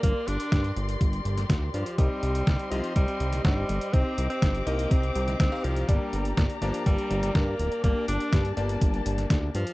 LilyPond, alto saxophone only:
\new Staff \with { instrumentName = "Alto saxophone" } { \clef bass \time 4/4 \key g \minor \tempo 4 = 123 bes8 d'4 r2 f8 | g4. f8 g4 g4 | c'8. c'8. bes8 c'4 c'8 f8 | g4 r8 f8 g4 bes4 |
bes8 d'4 r2 f8 | }